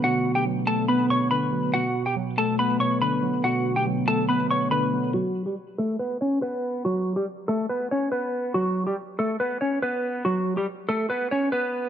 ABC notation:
X:1
M:4/4
L:1/16
Q:1/4=141
K:Bm
V:1 name="Clean electric guitar"
[Ff]3 [Gg] z2 [Aa]2 [Bb]2 [cc']2 [Bb]4 | [Ff]3 [Gg] z2 [Aa]2 [Bb]2 [cc']2 [Bb]4 | [Ff]3 [Gg] z2 [Aa]2 [Bb]2 [cc']2 [Bb]4 | [F,F]3 [G,G] z2 [A,A]2 [B,B]2 [Cc]2 [B,B]4 |
[F,F]3 [G,G] z2 [A,A]2 [B,B]2 [Cc]2 [B,B]4 | [F,F]3 [G,G] z2 [A,A]2 [B,B]2 [Cc]2 [B,B]4 | [F,F]3 [G,G] z2 [A,A]2 [B,B]2 [Cc]2 [B,B]4 |]
V:2 name="Synth keys" clef=bass
[B,,D,F,B,]4 F,2 A,2 B,2 B,,2 D,2 F,2 | B,,4 F,2 A,2 B,2 B,,2 D,2 F,2 | B,,4 F,2 A,2 B,2 B,,2 D,2 F,2 | z16 |
z16 | z16 | z16 |]